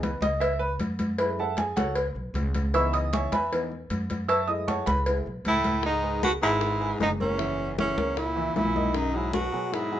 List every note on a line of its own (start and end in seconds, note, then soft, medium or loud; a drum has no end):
0.00 0.15 C#2 medium
0.00 0.22 B4 medium
0.00 cowbell medium
0.00 high conga loud
0.21 0.76 C#2 loud
0.21 0.41 D#5 loud
0.21 cowbell medium
0.21 high conga loud
0.40 0.60 E5 loud
0.40 cowbell loud
0.40 high conga soft
0.59 0.71 B4 loud
0.59 high conga soft
0.79 1.71 F#2 loud
0.79 cowbell medium
0.79 high conga medium
0.99 cowbell medium
0.99 high conga medium
1.18 1.44 G#3 medium
1.18 1.45 A3 medium
1.18 1.45 E4 medium
1.18 1.38 B4 medium
1.18 1.38 B5 medium
1.18 cowbell loud
1.18 high conga soft
1.39 1.58 A4 medium
1.39 1.58 E5 medium
1.39 1.58 F#5 medium
1.39 1.58 A5 medium
1.39 high conga soft
1.57 1.77 G#4 medium
1.57 1.77 G#5 medium
1.57 cowbell medium
1.57 high conga loud
1.76 2.13 C#2 medium
1.76 1.96 F#4 medium
1.76 1.96 A4 medium
1.76 1.96 C#5 medium
1.76 1.96 F#5 loud
1.76 cowbell medium
1.76 high conga loud
1.95 cowbell loud
1.95 high conga soft
2.15 2.33 B1 medium
2.15 high conga soft
2.34 3.25 C#2 loud
2.34 cowbell medium
2.34 high conga medium
2.54 cowbell medium
2.54 high conga medium
2.73 3.29 E3 medium
2.73 3.29 B3 medium
2.73 3.29 D#4 medium
2.73 2.93 E5 medium
2.73 2.93 B5 medium
2.73 2.93 C#6 medium
2.73 2.93 E6 loud
2.73 cowbell loud
2.73 high conga soft
2.93 3.12 D#5 medium
2.93 3.12 D#6 loud
2.93 cowbell medium
2.93 high conga soft
3.13 3.32 C#5 medium
3.13 3.31 E5 medium
3.13 3.31 G#5 medium
3.13 3.32 C#6 medium
3.13 cowbell medium
3.13 high conga loud
3.32 3.86 E2 medium
3.32 3.51 B4 medium
3.32 3.51 E5 medium
3.32 3.51 G#5 medium
3.32 3.51 B5 loud
3.32 cowbell medium
3.32 high conga loud
3.52 3.69 E3 medium
3.52 3.69 B3 soft
3.52 3.70 D#4 medium
3.52 cowbell loud
3.52 high conga soft
3.72 high conga soft
3.90 4.81 F#2 loud
3.90 cowbell medium
3.90 high conga medium
4.10 cowbell medium
4.10 high conga medium
4.29 4.48 E5 medium
4.29 4.48 A5 medium
4.29 4.48 C#6 medium
4.29 4.47 E6 loud
4.29 cowbell loud
4.29 high conga soft
4.47 5.05 G#3 medium
4.47 5.05 A3 medium
4.47 5.05 E4 medium
4.47 4.67 D#5 medium
4.47 4.67 D#6 loud
4.47 high conga soft
4.68 4.86 C#5 medium
4.68 4.87 F#5 medium
4.68 4.87 A5 medium
4.68 4.86 C#6 medium
4.68 cowbell medium
4.68 high conga loud
4.86 5.23 C#2 medium
4.86 4.98 B4 medium
4.86 4.98 B5 loud
4.86 cowbell medium
4.86 high conga loud
5.06 5.24 G#3 soft
5.06 5.24 A3 soft
5.06 5.24 E4 medium
5.06 cowbell loud
5.06 high conga soft
5.26 5.44 B1 medium
5.26 high conga soft
5.45 6.36 C#2 loud
5.45 5.82 A2 medium
5.45 5.83 E4 loud
5.45 cowbell medium
5.45 high conga medium
5.64 cowbell medium
5.64 high conga medium
5.83 6.21 G#2 medium
5.83 6.21 D#4 loud
5.83 high bongo medium
5.83 high conga soft
6.02 6.35 G#3 medium
6.02 6.35 G#4 medium
6.02 6.35 B4 medium
6.02 high conga soft
6.23 6.32 B2 medium
6.23 6.33 F#4 medium
6.23 high bongo medium
6.23 high conga medium
6.41 6.96 G#1 medium
6.41 6.97 G#2 medium
6.41 6.74 G#3 medium
6.41 6.97 E4 medium
6.41 6.74 G#4 medium
6.41 6.74 B4 medium
6.41 high bongo soft
6.41 high conga soft
6.61 high bongo medium
6.61 high conga soft
6.80 7.13 G#3 medium
6.80 7.12 G#4 medium
6.80 7.13 B4 medium
6.80 high bongo soft
6.80 high conga soft
7.00 7.91 F#1 medium
7.00 7.10 G#2 medium
7.00 7.11 D#4 medium
7.00 high bongo soft
7.00 low bongo medium
7.00 high conga medium
7.20 7.75 E2 medium
7.20 7.36 A#3 medium
7.20 7.75 C#4 medium
7.20 7.36 A#4 medium
7.20 7.36 C#5 medium
7.20 high bongo soft
7.20 high conga medium
7.38 7.70 E3 medium
7.38 7.70 E4 medium
7.38 7.71 E5 medium
7.38 high bongo medium
7.38 high conga soft
7.60 high conga soft
7.78 8.19 E2 medium
7.78 7.94 E3 medium
7.78 8.19 C#4 medium
7.78 7.94 E4 medium
7.78 7.94 E5 medium
7.78 high bongo medium
7.78 high conga loud
7.97 8.51 C#2 medium
7.97 8.29 A#3 medium
7.97 8.29 A#4 medium
7.97 8.29 C#5 medium
7.97 high bongo soft
7.97 high conga loud
8.17 8.56 A#2 medium
8.17 8.56 E4 medium
8.17 high bongo medium
8.17 high conga soft
8.36 8.68 E3 medium
8.36 8.68 E4 medium
8.36 8.68 E5 medium
8.36 high bongo soft
8.36 high conga soft
8.54 9.46 B1 medium
8.54 8.96 A#2 medium
8.54 8.97 E4 medium
8.54 high bongo soft
8.54 low bongo medium
8.54 high conga medium
8.76 9.07 D#3 medium
8.76 9.07 D#4 medium
8.76 9.08 D#5 medium
8.76 high bongo soft
8.76 high conga medium
8.94 9.16 F#2 medium
8.94 9.18 D#4 loud
8.94 high bongo medium
8.94 high conga soft
9.14 9.33 G#2 medium
9.14 9.46 F#3 medium
9.14 9.33 E4 medium
9.14 9.46 F#4 medium
9.14 9.47 G#4 medium
9.14 high conga soft
9.33 9.74 B2 medium
9.33 9.75 F#4 loud
9.33 high bongo medium
9.33 high conga loud
9.52 10.00 B2 medium
9.52 9.84 F#3 medium
9.52 9.85 F#4 medium
9.52 9.85 G#4 medium
9.52 high bongo soft
9.52 high conga soft
9.73 10.00 G#2 medium
9.73 10.00 E4 medium
9.73 high bongo medium
9.73 high conga soft
9.92 10.00 F#3 medium
9.92 10.00 F#4 medium
9.92 10.00 G#4 medium
9.92 high bongo soft
9.92 high conga soft